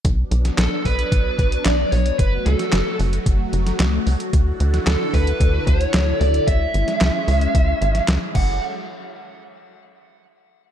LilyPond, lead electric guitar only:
\new Staff \with { instrumentName = "Lead electric guitar" } { \time 4/4 \key fis \minor \tempo 4 = 112 r4 a'8 b'4. d''8 cis''8 | b'8 a'4 r2 r8 | r4 a'8 b'4 cis''4 d''8 | e''2. r8 fis''8 |
r1 | }